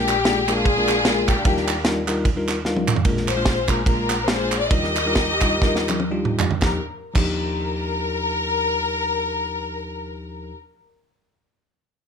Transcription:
Already playing: A#1 A#2 G#3 A#3 D4 F4 G4 A#4
0.08 clap, ride
0.25 G#3 A#3 D4 F4 G#4, snare, ride
0.48 G#3 A#3 D4 F4 G#4 A#4, clap, ride
0.65 kick, ride
0.77 G#3 A#3 D4 F4 A#4
0.88 snare, clap, ride
1.05 G#3 A#3 D4 F4 A#4, snare, ride
1.28 A#3 D4 G4, kick, clap, ride
1.45 D#2 D#3 G3 D4 D#4 F4 A#4, kick, ride
1.57 snare
1.68 clap, ride
1.85 G3 D4 D#4 F4 A#4, snare, ride
2.08 G3 D4 D#4 F4 A#4, clap, ride
2.25 kick, ride
2.36 G3 D4 D#4 F4 A#4
2.48 snare, clap, ride
2.65 G3 D4 D#4 F4 A#4 F5, snare
2.76 high tom
2.88 clap, mid tom
2.96 floor tom
3.05 A#1 A#2 G#3 A#3 D4 F4 A#4, kick, ride
3.17 snare
3.27 F4 G#4 C5, clap, ride
3.36 G#3 A#3 D4 F4 C5
3.45 kick, snare, ride
3.68 G#3 A#3 D4 F4 A#4, kick, clap, ride
3.85 G#3 A#3 D4 F4 A#4, kick, ride
4.10 snare, clap, ride
4.26 G#3 A#3 D4 F4 G#4 C5, snare, ride
4.52 clap, ride
4.59 D5
4.70 D#2 D#3 G3 D4 D#4 F4 G4 A#4 D#5, kick, ride
4.84 snare
4.96 clap, ride
5.06 G3 D4 D#4 F4 A#4
5.15 kick, snare, ride
5.41 G3 D4 D#4 F4 A#4, kick, clap, ride
5.62 G3 D4 D#4 F4 A#4, kick, snare
5.76 snare
5.89 clap, high tom
6.00 high tom
6.11 G3 D4 D#4 F4 G4
6.25 mid tom
6.39 clap, floor tom
6.51 floor tom
6.60 D#2 F3 D4 D#4 A#4, kick, snare, clap
6.64 G4
7.14 D#2 F3 D4 D#4 A#4, kick, clap, crash
7.18 G4

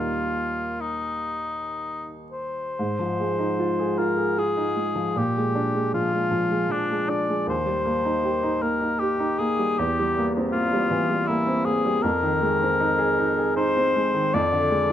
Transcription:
Already playing: D#2 G3 A#3 D#4 F4
0.81 D#4
2.32 C5
2.79 G#2
2.99 F3
3.20 G#3
3.39 D#4
3.59 F4
3.79 G#4
3.98 F4 A#4
4.17 G#4
4.38 F4 G#4
4.57 D#4
4.76 G#3
4.95 F3
5.16 A#2 G4
5.37 G#3
5.55 D4
5.74 G#3
5.94 F3 F4
6.12 G#3
6.31 F3
6.50 G#3
6.70 F3 D4
6.91 G#3
7.08 D4 D5
7.29 G#3
7.47 D#2 C5
7.66 G3
7.85 A#3
8.05 D#4
8.24 G4
8.43 D#4
8.61 A#3 A#4
8.81 D#4
8.99 G4
9.19 D#4
9.39 A#3 G#4
9.59 G3
9.78 E2 G4
9.99 G3
10.18 A#3
10.37 C4
10.52 A#3 F4
10.73 G3
10.91 E3
11.10 G3
11.27 A#3 E4
11.47 C4
11.65 A#3 G#4
11.85 G3
12.02 F2 A#4
12.22 D#3
12.42 G#3
12.62 C4
12.80 D#4
12.98 G#4
13.19 D#4
13.38 G#4
13.56 D#4 C5
13.77 C4
13.95 G#3
14.14 D#3
14.34 F2 D5
14.52 D3
14.70 G#3

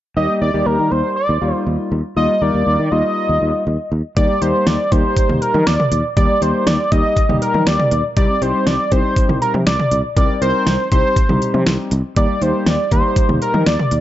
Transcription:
0.17 D#2 G3 A#3 D#4 G4 D#5
0.41 D#2 D5
0.54 D#2 G3 A#3 D#4 G4
0.66 D#2 A#4
0.79 D#3
0.91 D#2 C5
1.16 D5
1.29 D#2
1.42 D#2 G3 A#3 D#4 F4
1.67 D#2
1.92 D#2
2.16 D#2 G3 A#3 D#4 F4 D#5
2.42 D#2 G3 A#3 D#4 A#4 D5
2.54 D#2
2.67 D#2
2.79 D#3
2.91 D#2 G3 A#3 D#4 F4 D#5
3.29 D#2
3.42 D#2
3.67 D#2
3.92 D#2
4.16 D#2 G3 A#3 D#4 G4 D5, kick, closed hi-hat
4.41 D#2 G3 A#3 D#4 G4 C5, closed hi-hat
4.67 D#2 D5, snare, closed hi-hat
4.92 D#2 G3 A#3 D#4 G4 C5, kick, closed hi-hat
5.17 kick, closed hi-hat
5.29 D#2, mid tom
5.42 A#4, closed hi-hat
5.54 D#3, mid tom
5.66 D#2 D5, snare, closed hi-hat
5.80 mid tom
5.92 D#2, closed hi-hat
6.17 D#2 G3 A#3 D#4 G4 D5, kick, closed hi-hat
6.42 D#2 G3 A#3 D#4 G4 C5, closed hi-hat
6.67 D#2 D5, snare, closed hi-hat
6.92 D#2 G3 A#3 D#4 G4 D#5, kick, closed hi-hat
7.17 kick, closed hi-hat
7.29 D#2 G3 A#3 D#4 G4, mid tom
7.42 A#4, closed hi-hat
7.54 D#3, mid tom
7.67 D#2 D5, snare, closed hi-hat
7.79 mid tom
7.91 D#2, closed hi-hat
8.17 C2 G3 C4 D#4 G4 D5, kick, closed hi-hat
8.42 C2 G3 C4 D#4 G4 C5, closed hi-hat
8.67 C2 D5, snare, closed hi-hat
8.92 C2 G3 C4 D#4 G4 C5, kick, closed hi-hat
9.16 kick, closed hi-hat
9.29 C2, mid tom
9.42 A#4, closed hi-hat
9.54 C3, mid tom
9.67 C2 D5, snare, closed hi-hat
9.79 mid tom
9.91 C2, closed hi-hat
10.17 C2 G3 C4 D#4 A#4 D5, kick, closed hi-hat
10.41 C2 G3 C4 D#4 A#4 C5, closed hi-hat
10.67 C2, snare, closed hi-hat
10.92 C2 G3 C4 D#4 G4 C5, kick, closed hi-hat
11.16 kick, closed hi-hat
11.29 C2 G3 C4 D#4 G4, mid tom
11.42 closed hi-hat
11.54 C3, mid tom
11.67 C2, snare, closed hi-hat
11.91 C2, closed hi-hat
12.16 D#2 G3 A#3 D#4 G4 D5, kick, closed hi-hat
12.42 D#2 G3 A#3 D#4 G4 C5, closed hi-hat
12.66 D#2 D5, snare, closed hi-hat
12.91 D#2 G3 A#3 D#4 G4 C5, kick, closed hi-hat
13.16 kick, closed hi-hat
13.29 D#2, mid tom
13.42 A#4, closed hi-hat
13.54 D#3, mid tom
13.66 D#2 D5, snare, closed hi-hat
13.79 mid tom
13.91 D#2, closed hi-hat

